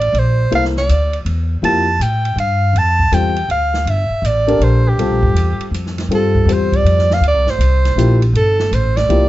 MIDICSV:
0, 0, Header, 1, 6, 480
1, 0, Start_track
1, 0, Tempo, 373134
1, 660, Time_signature, 3, 2, 24, 8
1, 11949, End_track
2, 0, Start_track
2, 0, Title_t, "Soprano saxophone"
2, 0, Program_c, 0, 64
2, 0, Note_on_c, 0, 74, 79
2, 244, Note_on_c, 0, 72, 90
2, 263, Note_off_c, 0, 74, 0
2, 692, Note_off_c, 0, 72, 0
2, 708, Note_on_c, 0, 77, 90
2, 836, Note_off_c, 0, 77, 0
2, 1003, Note_on_c, 0, 74, 77
2, 1520, Note_off_c, 0, 74, 0
2, 2120, Note_on_c, 0, 81, 89
2, 2595, Note_on_c, 0, 79, 86
2, 2614, Note_off_c, 0, 81, 0
2, 3066, Note_off_c, 0, 79, 0
2, 3086, Note_on_c, 0, 77, 87
2, 3575, Note_on_c, 0, 81, 90
2, 3594, Note_off_c, 0, 77, 0
2, 4037, Note_on_c, 0, 79, 82
2, 4056, Note_off_c, 0, 81, 0
2, 4507, Note_off_c, 0, 79, 0
2, 4515, Note_on_c, 0, 77, 87
2, 5013, Note_on_c, 0, 76, 79
2, 5032, Note_off_c, 0, 77, 0
2, 5486, Note_on_c, 0, 74, 81
2, 5505, Note_off_c, 0, 76, 0
2, 5966, Note_on_c, 0, 72, 77
2, 5985, Note_off_c, 0, 74, 0
2, 6285, Note_on_c, 0, 67, 70
2, 6304, Note_off_c, 0, 72, 0
2, 7396, Note_off_c, 0, 67, 0
2, 7909, Note_on_c, 0, 69, 71
2, 8396, Note_on_c, 0, 72, 76
2, 8415, Note_off_c, 0, 69, 0
2, 8700, Note_on_c, 0, 74, 84
2, 8719, Note_off_c, 0, 72, 0
2, 9175, Note_on_c, 0, 77, 87
2, 9195, Note_off_c, 0, 74, 0
2, 9322, Note_off_c, 0, 77, 0
2, 9361, Note_on_c, 0, 74, 84
2, 9653, Note_on_c, 0, 72, 78
2, 9672, Note_off_c, 0, 74, 0
2, 10590, Note_off_c, 0, 72, 0
2, 10759, Note_on_c, 0, 69, 79
2, 11245, Note_on_c, 0, 72, 78
2, 11265, Note_off_c, 0, 69, 0
2, 11536, Note_on_c, 0, 74, 85
2, 11555, Note_off_c, 0, 72, 0
2, 11949, Note_off_c, 0, 74, 0
2, 11949, End_track
3, 0, Start_track
3, 0, Title_t, "Grand piano"
3, 0, Program_c, 1, 0
3, 656, Note_on_c, 1, 58, 53
3, 659, Note_on_c, 1, 64, 51
3, 661, Note_on_c, 1, 69, 49
3, 668, Note_on_c, 1, 72, 60
3, 935, Note_off_c, 1, 58, 0
3, 937, Note_off_c, 1, 64, 0
3, 938, Note_off_c, 1, 69, 0
3, 941, Note_off_c, 1, 72, 0
3, 2093, Note_on_c, 1, 53, 54
3, 2095, Note_on_c, 1, 64, 48
3, 2096, Note_on_c, 1, 58, 49
3, 2099, Note_on_c, 1, 67, 61
3, 2373, Note_off_c, 1, 53, 0
3, 2374, Note_off_c, 1, 58, 0
3, 2374, Note_off_c, 1, 64, 0
3, 2376, Note_off_c, 1, 67, 0
3, 4011, Note_on_c, 1, 55, 53
3, 4013, Note_on_c, 1, 60, 49
3, 4014, Note_on_c, 1, 69, 58
3, 4015, Note_on_c, 1, 65, 49
3, 4291, Note_off_c, 1, 55, 0
3, 4292, Note_off_c, 1, 60, 0
3, 4293, Note_off_c, 1, 65, 0
3, 4293, Note_off_c, 1, 69, 0
3, 5754, Note_on_c, 1, 69, 65
3, 5759, Note_on_c, 1, 62, 62
3, 5764, Note_on_c, 1, 67, 62
3, 5773, Note_on_c, 1, 70, 73
3, 6376, Note_off_c, 1, 69, 0
3, 6379, Note_off_c, 1, 62, 0
3, 6381, Note_off_c, 1, 67, 0
3, 6386, Note_off_c, 1, 70, 0
3, 6414, Note_on_c, 1, 55, 53
3, 6420, Note_on_c, 1, 60, 50
3, 6420, Note_on_c, 1, 65, 53
3, 6422, Note_on_c, 1, 69, 64
3, 7752, Note_off_c, 1, 55, 0
3, 7755, Note_off_c, 1, 60, 0
3, 7755, Note_off_c, 1, 65, 0
3, 7756, Note_off_c, 1, 69, 0
3, 7855, Note_on_c, 1, 60, 53
3, 7856, Note_on_c, 1, 55, 57
3, 7858, Note_on_c, 1, 65, 53
3, 7858, Note_on_c, 1, 69, 60
3, 8316, Note_off_c, 1, 55, 0
3, 8317, Note_off_c, 1, 60, 0
3, 8320, Note_off_c, 1, 65, 0
3, 8320, Note_off_c, 1, 69, 0
3, 8335, Note_on_c, 1, 55, 51
3, 8336, Note_on_c, 1, 60, 41
3, 8343, Note_on_c, 1, 65, 44
3, 8346, Note_on_c, 1, 72, 55
3, 9063, Note_off_c, 1, 55, 0
3, 9063, Note_off_c, 1, 60, 0
3, 9066, Note_off_c, 1, 65, 0
3, 9068, Note_off_c, 1, 72, 0
3, 10258, Note_on_c, 1, 53, 58
3, 10259, Note_on_c, 1, 64, 57
3, 10262, Note_on_c, 1, 58, 57
3, 10264, Note_on_c, 1, 67, 65
3, 10536, Note_off_c, 1, 53, 0
3, 10536, Note_off_c, 1, 64, 0
3, 10537, Note_off_c, 1, 58, 0
3, 10538, Note_off_c, 1, 67, 0
3, 11694, Note_on_c, 1, 53, 59
3, 11698, Note_on_c, 1, 58, 57
3, 11701, Note_on_c, 1, 64, 53
3, 11702, Note_on_c, 1, 67, 68
3, 11949, Note_off_c, 1, 53, 0
3, 11949, Note_off_c, 1, 58, 0
3, 11949, Note_off_c, 1, 64, 0
3, 11949, Note_off_c, 1, 67, 0
3, 11949, End_track
4, 0, Start_track
4, 0, Title_t, "Upright bass"
4, 0, Program_c, 2, 32
4, 0, Note_on_c, 2, 33, 76
4, 153, Note_off_c, 2, 33, 0
4, 161, Note_on_c, 2, 34, 76
4, 635, Note_off_c, 2, 34, 0
4, 653, Note_on_c, 2, 36, 70
4, 1121, Note_off_c, 2, 36, 0
4, 1145, Note_on_c, 2, 38, 79
4, 1599, Note_off_c, 2, 38, 0
4, 1607, Note_on_c, 2, 40, 73
4, 2078, Note_off_c, 2, 40, 0
4, 2084, Note_on_c, 2, 41, 71
4, 2556, Note_off_c, 2, 41, 0
4, 2562, Note_on_c, 2, 45, 77
4, 3026, Note_off_c, 2, 45, 0
4, 3034, Note_on_c, 2, 43, 76
4, 3507, Note_off_c, 2, 43, 0
4, 3515, Note_on_c, 2, 41, 73
4, 3991, Note_off_c, 2, 41, 0
4, 4006, Note_on_c, 2, 40, 78
4, 4477, Note_off_c, 2, 40, 0
4, 4484, Note_on_c, 2, 38, 74
4, 4951, Note_off_c, 2, 38, 0
4, 4959, Note_on_c, 2, 31, 73
4, 5254, Note_off_c, 2, 31, 0
4, 5428, Note_on_c, 2, 33, 78
4, 5899, Note_off_c, 2, 33, 0
4, 5907, Note_on_c, 2, 34, 78
4, 6387, Note_off_c, 2, 34, 0
4, 6395, Note_on_c, 2, 36, 70
4, 6562, Note_off_c, 2, 36, 0
4, 6562, Note_on_c, 2, 34, 51
4, 6722, Note_off_c, 2, 34, 0
4, 6730, Note_on_c, 2, 31, 54
4, 6858, Note_off_c, 2, 31, 0
4, 6866, Note_on_c, 2, 40, 76
4, 7166, Note_off_c, 2, 40, 0
4, 7342, Note_on_c, 2, 41, 76
4, 7815, Note_off_c, 2, 41, 0
4, 7823, Note_on_c, 2, 43, 73
4, 8294, Note_off_c, 2, 43, 0
4, 8302, Note_on_c, 2, 40, 81
4, 8784, Note_off_c, 2, 40, 0
4, 8797, Note_on_c, 2, 41, 73
4, 9257, Note_off_c, 2, 41, 0
4, 9265, Note_on_c, 2, 38, 72
4, 9438, Note_off_c, 2, 38, 0
4, 9438, Note_on_c, 2, 36, 49
4, 9578, Note_off_c, 2, 36, 0
4, 9585, Note_on_c, 2, 31, 53
4, 9746, Note_off_c, 2, 31, 0
4, 9753, Note_on_c, 2, 36, 79
4, 10225, Note_off_c, 2, 36, 0
4, 10233, Note_on_c, 2, 34, 80
4, 10711, Note_off_c, 2, 34, 0
4, 10718, Note_on_c, 2, 31, 78
4, 11194, Note_off_c, 2, 31, 0
4, 11208, Note_on_c, 2, 33, 83
4, 11679, Note_off_c, 2, 33, 0
4, 11690, Note_on_c, 2, 36, 73
4, 11949, Note_off_c, 2, 36, 0
4, 11949, End_track
5, 0, Start_track
5, 0, Title_t, "Muted upright bass strokes"
5, 5269, Note_on_c, 9, 29, 33
5, 5397, Note_off_c, 9, 29, 0
5, 7191, Note_on_c, 9, 29, 34
5, 7320, Note_off_c, 9, 29, 0
5, 11949, End_track
6, 0, Start_track
6, 0, Title_t, "Drums"
6, 17, Note_on_c, 9, 51, 38
6, 146, Note_off_c, 9, 51, 0
6, 186, Note_on_c, 9, 51, 49
6, 315, Note_off_c, 9, 51, 0
6, 671, Note_on_c, 9, 51, 51
6, 800, Note_off_c, 9, 51, 0
6, 829, Note_on_c, 9, 38, 26
6, 958, Note_off_c, 9, 38, 0
6, 984, Note_on_c, 9, 38, 35
6, 1112, Note_off_c, 9, 38, 0
6, 1148, Note_on_c, 9, 44, 42
6, 1148, Note_on_c, 9, 51, 58
6, 1277, Note_off_c, 9, 44, 0
6, 1277, Note_off_c, 9, 51, 0
6, 1455, Note_on_c, 9, 51, 39
6, 1584, Note_off_c, 9, 51, 0
6, 1620, Note_on_c, 9, 51, 49
6, 1749, Note_off_c, 9, 51, 0
6, 2106, Note_on_c, 9, 51, 52
6, 2234, Note_off_c, 9, 51, 0
6, 2587, Note_on_c, 9, 44, 52
6, 2587, Note_on_c, 9, 51, 59
6, 2715, Note_off_c, 9, 44, 0
6, 2715, Note_off_c, 9, 51, 0
6, 2894, Note_on_c, 9, 51, 39
6, 3023, Note_off_c, 9, 51, 0
6, 3065, Note_on_c, 9, 51, 47
6, 3194, Note_off_c, 9, 51, 0
6, 3546, Note_on_c, 9, 51, 49
6, 3674, Note_off_c, 9, 51, 0
6, 3849, Note_on_c, 9, 36, 41
6, 3978, Note_off_c, 9, 36, 0
6, 4020, Note_on_c, 9, 44, 54
6, 4020, Note_on_c, 9, 51, 54
6, 4149, Note_off_c, 9, 44, 0
6, 4149, Note_off_c, 9, 51, 0
6, 4327, Note_on_c, 9, 51, 37
6, 4456, Note_off_c, 9, 51, 0
6, 4499, Note_on_c, 9, 51, 46
6, 4627, Note_off_c, 9, 51, 0
6, 4808, Note_on_c, 9, 38, 38
6, 4936, Note_off_c, 9, 38, 0
6, 4980, Note_on_c, 9, 51, 53
6, 5109, Note_off_c, 9, 51, 0
6, 5461, Note_on_c, 9, 44, 47
6, 5461, Note_on_c, 9, 51, 58
6, 5590, Note_off_c, 9, 44, 0
6, 5590, Note_off_c, 9, 51, 0
6, 5767, Note_on_c, 9, 51, 38
6, 5896, Note_off_c, 9, 51, 0
6, 5936, Note_on_c, 9, 51, 49
6, 6064, Note_off_c, 9, 51, 0
6, 6418, Note_on_c, 9, 51, 51
6, 6547, Note_off_c, 9, 51, 0
6, 6725, Note_on_c, 9, 36, 52
6, 6853, Note_off_c, 9, 36, 0
6, 6899, Note_on_c, 9, 44, 42
6, 6899, Note_on_c, 9, 51, 54
6, 7028, Note_off_c, 9, 44, 0
6, 7028, Note_off_c, 9, 51, 0
6, 7211, Note_on_c, 9, 51, 40
6, 7339, Note_off_c, 9, 51, 0
6, 7387, Note_on_c, 9, 44, 48
6, 7387, Note_on_c, 9, 51, 51
6, 7516, Note_off_c, 9, 44, 0
6, 7516, Note_off_c, 9, 51, 0
6, 7542, Note_on_c, 9, 38, 25
6, 7671, Note_off_c, 9, 38, 0
6, 7694, Note_on_c, 9, 51, 39
6, 7701, Note_on_c, 9, 38, 38
6, 7822, Note_off_c, 9, 51, 0
6, 7829, Note_off_c, 9, 38, 0
6, 7865, Note_on_c, 9, 51, 51
6, 7994, Note_off_c, 9, 51, 0
6, 8169, Note_on_c, 9, 36, 47
6, 8298, Note_off_c, 9, 36, 0
6, 8347, Note_on_c, 9, 44, 51
6, 8347, Note_on_c, 9, 51, 55
6, 8475, Note_off_c, 9, 44, 0
6, 8475, Note_off_c, 9, 51, 0
6, 8649, Note_on_c, 9, 36, 54
6, 8661, Note_on_c, 9, 51, 37
6, 8778, Note_off_c, 9, 36, 0
6, 8789, Note_off_c, 9, 51, 0
6, 8828, Note_on_c, 9, 51, 48
6, 8957, Note_off_c, 9, 51, 0
6, 8987, Note_on_c, 9, 38, 26
6, 9116, Note_off_c, 9, 38, 0
6, 9140, Note_on_c, 9, 38, 40
6, 9268, Note_off_c, 9, 38, 0
6, 9306, Note_on_c, 9, 51, 48
6, 9435, Note_off_c, 9, 51, 0
6, 9606, Note_on_c, 9, 38, 35
6, 9735, Note_off_c, 9, 38, 0
6, 9784, Note_on_c, 9, 44, 51
6, 9784, Note_on_c, 9, 51, 59
6, 9912, Note_off_c, 9, 44, 0
6, 9912, Note_off_c, 9, 51, 0
6, 10099, Note_on_c, 9, 38, 28
6, 10100, Note_on_c, 9, 51, 39
6, 10227, Note_off_c, 9, 38, 0
6, 10229, Note_off_c, 9, 51, 0
6, 10271, Note_on_c, 9, 44, 50
6, 10271, Note_on_c, 9, 51, 52
6, 10400, Note_off_c, 9, 44, 0
6, 10400, Note_off_c, 9, 51, 0
6, 10575, Note_on_c, 9, 51, 39
6, 10704, Note_off_c, 9, 51, 0
6, 10745, Note_on_c, 9, 51, 52
6, 10874, Note_off_c, 9, 51, 0
6, 11054, Note_on_c, 9, 38, 42
6, 11182, Note_off_c, 9, 38, 0
6, 11225, Note_on_c, 9, 44, 51
6, 11225, Note_on_c, 9, 51, 58
6, 11354, Note_off_c, 9, 44, 0
6, 11354, Note_off_c, 9, 51, 0
6, 11537, Note_on_c, 9, 38, 42
6, 11538, Note_on_c, 9, 51, 41
6, 11665, Note_off_c, 9, 38, 0
6, 11667, Note_off_c, 9, 51, 0
6, 11704, Note_on_c, 9, 51, 49
6, 11833, Note_off_c, 9, 51, 0
6, 11949, End_track
0, 0, End_of_file